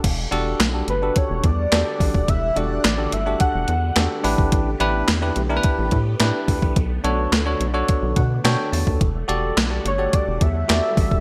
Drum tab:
CC |x---------------|----------------|----------------|----------------|
HH |x-x-x-x-x-x-x-o-|x-x-x-x-x-x-x-o-|x-x-x-x-x-x-x-o-|x-x-x-x-x-x-x-o-|
CP |----x-------x---|----x-------x---|----x-------x---|----x-------x---|
SD |----o-------o---|----o-------o---|----o-------o---|----o-------o---|
BD |o-------o-o---oo|o-------o------o|o-------o-o---oo|o-------o-o----o|

CC |----------------|
HH |x-x-x-x-x-x-x-o-|
CP |----x-------x---|
SD |----o-------o---|
BD |o-------o-o---oo|